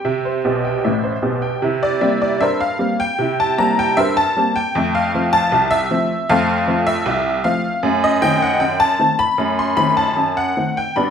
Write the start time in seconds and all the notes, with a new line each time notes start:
Already playing: G5
0.05 C3 E5
0.25 C5
0.45 B1 B2 G4
0.65 G5
0.84 A1 A2 E5
1.03 C5
1.22 B1 B2 G4
1.42 G5
1.62 C3 E4
1.83 D5
2.01 G3 A#3 C4 E5
2.22 D5
2.41 G2 A#4 C5 E5
2.60 F5
2.79 G3 A#3 C4
3.00 G5
3.19 C3 E4
3.40 A5
3.58 G3 A#3 C4 A#5
3.79 G5
3.97 G2 A#4 C5 E5
4.17 A5
4.36 G3 A#3 C4
4.56 G5
4.75 F2 A3
4.95 F5
5.14 F3 A3 C4
5.33 A5
5.52 C2
5.71 E5
5.91 F3 A3 C4
6.29 F2 A3 A4 C5 F5
6.67 F3 A3 C4
6.87 E5
7.06 C2
7.44 F3 A3 C4 F5
7.83 F#2 A3
8.04 D#5
8.22 D#3 A3 C4 G5
8.42 F#5
8.60 F#2 G5
8.80 A5
8.99 D#3 A3 C4
9.19 B5
9.38 F#2 A3
9.59 C6
9.77 D#3 A3 C4 B5
9.97 A5
10.16 F#2
10.37 F#5
10.57 D#3 A3 C4
10.77 G5
10.96 G2 B3 D5 G5 B5